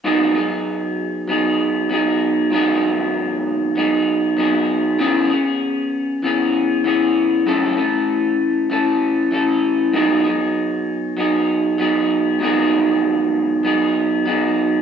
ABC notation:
X:1
M:4/4
L:1/8
Q:1/4=97
K:G#phr
V:1 name="Clean electric guitar"
[G,,D,F,B,DG] [F,B,DG]3 [F,B,DG]2 [F,B,DG]2 | [G,,D,F,B,DG]4 [F,B,DG]2 [F,B,DG]2 | [C,E,B,CG] [B,CG]3 [E,B,CG]2 [E,B,CG]2 | [F,,C,E,A,CA] [E,A,CA]3 [E,A,CA]2 [E,A,CA]2 |
[G,,D,F,B,DG] [F,B,DG]3 [F,B,DG]2 [F,B,DG]2 | [G,,D,F,B,DG]4 [F,B,DG]2 [F,B,DG]2 |]